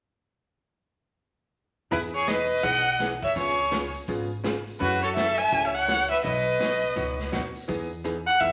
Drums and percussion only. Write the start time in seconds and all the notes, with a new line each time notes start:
1.92 kick, open hi-hat
2.27 snare, closed hi-hat
2.50 open hi-hat
2.63 kick, open hi-hat
3.00 snare, closed hi-hat
3.23 kick
3.36 kick, open hi-hat
3.72 snare, closed hi-hat
3.94 open hi-hat
4.08 kick, open hi-hat
4.44 snare, closed hi-hat
4.67 open hi-hat
4.80 kick, open hi-hat
5.16 snare, closed hi-hat
5.39 open hi-hat
5.52 kick, open hi-hat
5.88 snare, closed hi-hat
6.24 kick, open hi-hat
6.61 snare, closed hi-hat
6.84 open hi-hat
6.97 kick, open hi-hat
7.20 snare
7.33 snare, closed hi-hat
7.56 open hi-hat
7.69 kick, open hi-hat
8.05 closed hi-hat
8.41 kick, open hi-hat